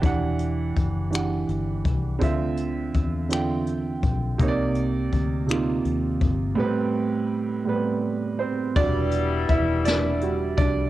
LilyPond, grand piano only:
\new Staff \with { instrumentName = "Grand piano" } { \time 6/8 \key d \dorian \tempo 4. = 55 << { r2. | r2. | r2. | r2 r8 <c' c''>8 |
d''4 <e' e''>8 <d' d''>4 <d' d''>8 | } \\ { <e d' g' fis''>4. <e d' g' fis''>4. | <d c' f' e''>4. <d c' f' g''>4. | <c bes ees' cis'' d''>4. <c bes ees' f'>4. | <a, g b c' b'>4. <a, g b c' b'>4. |
<g d' fis'>2 <g d' fis'>8 r8 | } >> }